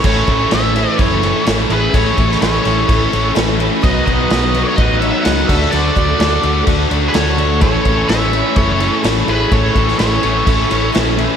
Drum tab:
CC |x-x-x-x-x-x-x-x-|x-x-x-x-x-x-x-x-|x-x-x-x-x-x-x-x-|x-x-x-x-x-x-x-x-|
SD |----o-------o---|---oo-------o---|----o-------o---|----o-------o---|
BD |o-o-----o-------|o-o-----o-------|o-o-----o-----o-|--o-----o-------|

CC |x-x-x-x-x-x-x-x-|x-x-x-x-x-x-x-x-|
SD |----o-------o---|---oo-------o---|
BD |o-o-----o-------|o-o-----o-------|